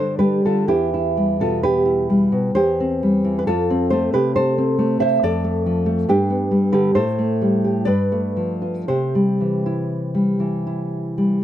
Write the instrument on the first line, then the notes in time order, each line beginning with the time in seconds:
nylon-string guitar
Already playing: G2 D3 G3 D4 A4 C5
0.19 G3 G4 B4
0.45 D3 F4 A4
0.68 E2 E4 G4
0.94 E4
1.17 G3
1.40 B2 F4 A4
1.63 G4 B4
1.85 E4
2.10 G3
2.32 B2
2.55 E2 G4 C5
2.80 C4
3.03 G3
3.24 E3
3.39 B4
3.47 F2 F4 A4
3.70 C4
3.90 A3 A4 C5
4.13 C3 G4 B4
4.36 A4 C5
4.58 C4
4.79 A3
5.00 C3 C5 E5
5.23 F2 A4 D5
5.44 A3
5.66 F3
5.86 A3
6.09 G2 D4 G4
6.30 B3
6.51 G3
6.72 D3 G4 B4
6.95 A2 A4 C5
7.19 A3
7.42 G3
7.64 G4
7.85 G2 B4 D5
8.12 A3
8.37 F3
8.62 F4
8.88 C3 G4 C5
9.15 G3
9.41 E3
9.66 E4
10.15 G3
10.40 E3
10.67 E4
11.18 G3